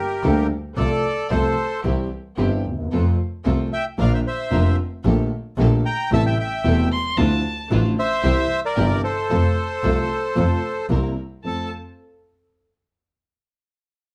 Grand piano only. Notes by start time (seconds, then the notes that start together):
0.25 D2 D3 G3 A#3 D4 A4
0.79 C2 C3 F3 A3 C4 A4
1.31 C2 C3 F3 A3 C4 A4
1.85 C2 C3 E3 G3 C4 G4
2.38 G1 G2 E3 G3 C4 G4
2.71 D2
2.79 D#2
2.86 E2
2.93 F2 C3 F3 A3 F4
3.46 C2 C3 F3 A3 F4
3.98 A#1 A#2 D3 F3 A#3 F4
4.51 F1 F2 D3 F3 A#3 F4
5.05 A#1 A#2 D3 A3 A#3 G4
5.58 A#1 A#2 D3 A3 A#3 G4
6.11 A1 A2 C3 G3 A3 E4
6.64 E1 E2 C3 G3 A3 E4
7.18 D2 D3 F3 A3 E4
7.70 A1 A2 D3 F3 A3 E4
8.23 C2 C3 E3 G3 E4
8.77 G1 G2 C3 E3 G3 E4
9.30 F2 C3 F3 A3 F4
9.83 C2 C3 F3 A3 F4
10.35 F2 C3 F3 A3 F4
10.89 C2 C3 G3 A#3 E4
11.44 F2 A3 C4 F4